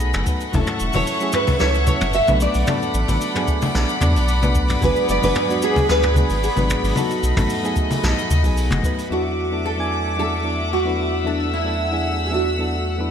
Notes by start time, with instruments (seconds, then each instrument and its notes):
Already playing: analog synth bass B1, synth keys F#3 A3 B3 D#4 G#4, string section A3 D#5 F#5 B5
0.00 cabasa
0.14 analog synth bass F#1, mid tom, cabasa
0.26 synth keys F#3 A3 B3 D#4 B4, kick, cabasa
0.40 cabasa
0.52 analog synth bass F#1, synth keys F#3 A3 C#4 E4 A4, string section A3 E5 C#6, nylon-string guitar A4, kick, open hi-hat, high conga, cabasa
0.67 mid tom, cabasa
0.80 analog synth bass E1, cabasa
0.93 analog synth bass E1, synth keys F#3 A3 C#4 E4 A4, nylon-string guitar C#5, open hi-hat, high conga, low conga, cabasa
1.06 open hi-hat, cabasa
1.20 synth keys F#3 A3 C#4 E4 G#4, cabasa
1.32 nylon-string guitar B4, mid tom, cabasa
1.47 kick, open hi-hat, high conga, cabasa
1.59 analog synth bass C#2, synth keys F#3 A3 C#4 E4 A4, nylon-string guitar C#5, snare, open hi-hat, cabasa
1.74 cabasa
1.87 synth keys F#3 A3 C#4 E4 A4, nylon-string guitar C#5, kick, high conga, cabasa
2.00 analog synth bass F#1, mid tom, open hi-hat, cabasa
2.13 nylon-string guitar E5, open hi-hat, cabasa
2.27 analog synth bass B1, synth keys F#3 A3 B3 D4 B4, high conga, cabasa
2.40 string section D5 B5, nylon-string guitar D5, cabasa
2.54 analog synth bass B1, open hi-hat, cabasa
2.67 synth keys F#3 A3 B3 D4 A4, mid tom, open hi-hat, high conga, cabasa
2.82 cabasa
2.94 analog synth bass A1, cabasa
3.08 analog synth bass A1, synth keys F#3 A3 B3 D4 A4, open hi-hat, high conga, low conga, cabasa
3.21 open hi-hat, cabasa
3.34 synth keys F#3 A3 B3 D4 G#4, mid tom, cabasa
3.48 kick, cabasa
3.62 open hi-hat, high conga, cabasa
3.74 analog synth bass B1, synth keys F#3 A3 B3 D4 A4, snare, open hi-hat, cabasa
3.89 cabasa
4.00 analog synth bass E2, synth keys F#3 A3 B3 D4 A4, mid tom, high conga, cabasa
4.16 analog synth bass B1, open hi-hat, cabasa
4.28 open hi-hat, cabasa
4.41 synth keys F#3 A3 B3 D4 B4, high conga, cabasa
4.55 kick, cabasa
4.68 mid tom, open hi-hat, cabasa
4.81 analog synth bass G#1, synth keys F#3 G#3 B3 D4 G#4, string section G#4, nylon-string guitar B4, kick, open hi-hat, high conga, cabasa
4.96 cabasa
5.09 analog synth bass F#1, nylon-string guitar D5, cabasa
5.21 analog synth bass F#1, synth keys F#3 G#3 B3 D4 G#4, nylon-string guitar B4, open hi-hat, high conga, low conga, cabasa
5.35 mid tom, open hi-hat, cabasa
5.48 synth keys F#3 G#3 B3 D4 F#4, cabasa
5.62 nylon-string guitar G#4, cabasa
5.76 kick, open hi-hat, high conga, cabasa
5.88 analog synth bass D2, synth keys F#3 G#3 B3 D4 G#4, nylon-string guitar B4, snare, open hi-hat, cabasa
6.03 mid tom, cabasa
6.15 synth keys F#3 G#3 B3 D4 G#4, kick, high conga, cabasa
6.30 analog synth bass G#1, open hi-hat, cabasa
6.43 nylon-string guitar G#4, open hi-hat, cabasa
6.56 analog synth bass G#1, synth keys F#3 G#3 B3 D4 B4, high conga, cabasa
6.70 mid tom, cabasa
6.83 analog synth bass G#1, open hi-hat, cabasa
6.95 synth keys F#3 A3 B3 D#4 A4, string section A3 D#5, nylon-string guitar F#4, open hi-hat, high conga, cabasa
7.11 cabasa
7.23 analog synth bass B1, cabasa
7.36 analog synth bass A1, synth keys F#3 A3 B3 D#4 A4, mid tom, open hi-hat, high conga, low conga, cabasa
7.50 open hi-hat, cabasa
7.63 synth keys F#3 A3 B3 D#4 G#4, cabasa
7.76 kick, cabasa
7.91 open hi-hat, high conga, cabasa
8.02 analog synth bass B1, synth keys F#3 A3 B3 D#4 A4, snare, mid tom, open hi-hat, cabasa
8.19 cabasa
8.30 analog synth bass D#2, high conga, cabasa
8.43 analog synth bass B1, synth keys F#3 A3 B3 D#4 G#4, kick, open hi-hat, cabasa
8.57 open hi-hat, cabasa
8.71 analog synth bass F#1, mid tom, high conga, cabasa
8.83 synth keys F#3 A3 B3 D#4 B4, kick, cabasa
8.98 open hi-hat, cabasa
9.09 analog synth bass E2, synth keys F#3 B3 D4 E4 A4, string section A3 E5 F#5 D6, nylon-string guitar F#4
9.51 synth keys F#3 B3 D4 E4 A4
9.65 nylon-string guitar A4
9.77 synth keys F#3 B3 D4 E4 G#5
10.17 synth keys F#3 B3 D4 E4 A4, nylon-string guitar A4
10.43 synth keys F#3 B3 D4 E4 A4
10.73 nylon-string guitar F#4
10.84 synth keys F#3 B3 D4 E4 B4
11.24 synth keys F#3 B3 D4 E4 A4, nylon-string guitar D4, string section E6
11.54 nylon-string guitar E4
11.64 synth keys F#3 B3 D4 E4 A4
11.90 synth keys F#3 B3 D4 E4 G#4
12.27 synth keys F#3, nylon-string guitar G#4
12.31 synth keys B3 D4 E4 A4, nylon-string guitar F#4
12.58 synth keys F#3 B3 D4 E4 A4
12.98 synth keys F#3 B3 D4 E4 B4